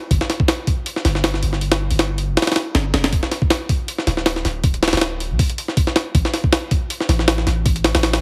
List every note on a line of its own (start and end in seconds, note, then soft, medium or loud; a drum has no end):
0.11 0.20 G1 medium
0.11 kick loud
0.11 open hi-hat medium
0.21 snare medium
0.30 snare soft
0.30 open hi-hat medium
0.40 kick medium
0.48 snare loud
0.48 open hi-hat medium
0.67 kick medium
0.67 open hi-hat medium
0.86 open hi-hat medium
0.96 snare soft
1.05 1.42 G1 loud
1.05 snare soft
1.05 open hi-hat medium
1.15 snare soft
1.24 snare loud
1.24 open hi-hat medium
1.34 snare soft
1.43 1.89 G1 medium
1.43 open hi-hat medium
1.53 snare soft
1.61 open hi-hat medium
1.72 snare loud
1.72 open hi-hat medium
1.91 2.30 G1 medium
1.91 open hi-hat medium
1.99 snare loud
1.99 open hi-hat medium
2.18 open hi-hat medium
2.29 2.36 F1 medium
2.37 snare medium
2.37 open hi-hat medium
2.42 snare medium
2.42 open hi-hat medium
2.47 snare medium
2.47 open hi-hat medium
2.52 snare medium
2.52 open hi-hat medium
2.56 snare loud
2.56 open hi-hat medium
2.75 2.92 G1 loud
2.75 snare loud
2.75 open hi-hat medium
2.94 3.11 F1 medium
2.94 snare loud
2.94 open hi-hat medium
3.04 snare loud
3.04 open hi-hat medium
3.13 3.22 D1 loud
3.13 kick loud
3.13 open hi-hat medium
3.23 snare medium
3.32 snare soft
3.32 open hi-hat medium
3.42 kick medium
3.50 snare loud
3.50 open hi-hat medium
3.69 kick medium
3.69 open hi-hat medium
3.88 open hi-hat medium
3.98 snare soft
4.07 4.43 D1 loud
4.07 snare soft
4.07 open hi-hat medium
4.17 snare soft
4.26 snare loud
4.26 open hi-hat medium
4.36 snare soft
4.45 4.91 D1 medium
4.45 snare soft
4.45 open hi-hat medium
4.64 kick loud
4.64 open hi-hat medium
4.74 closed hi-hat soft
4.83 snare medium
4.83 open hi-hat medium
4.88 snare medium
4.88 open hi-hat medium
4.93 5.32 D1 medium
4.93 snare medium
4.93 open hi-hat medium
4.97 snare medium
4.97 open hi-hat medium
5.01 snare loud
5.01 open hi-hat medium
5.20 open hi-hat medium
5.31 5.38 C2 medium
5.39 kick loud
5.39 open hi-hat medium
5.50 closed hi-hat soft
5.58 open hi-hat medium
5.68 snare soft
5.77 kick loud
5.77 open hi-hat medium
5.87 snare soft
5.96 snare medium
5.96 open hi-hat medium
6.15 6.24 A1 loud
6.15 kick loud
6.15 open hi-hat medium
6.25 snare medium
6.34 snare soft
6.34 open hi-hat medium
6.44 kick medium
6.53 snare loud
6.53 open hi-hat medium
6.71 kick medium
6.71 open hi-hat medium
6.90 open hi-hat medium
7.00 snare soft
7.09 7.45 A1 loud
7.09 snare soft
7.09 open hi-hat medium
7.19 snare soft
7.28 snare loud
7.28 open hi-hat medium
7.38 snare soft
7.47 7.93 A1 medium
7.47 snare soft
7.47 open hi-hat medium
7.66 kick loud
7.66 open hi-hat medium
7.76 closed hi-hat soft
7.84 snare medium
7.84 open hi-hat medium
7.95 8.21 A1 medium
7.95 snare loud
7.95 open hi-hat medium
8.03 snare loud
8.03 open hi-hat medium
8.13 snare medium
8.13 open hi-hat medium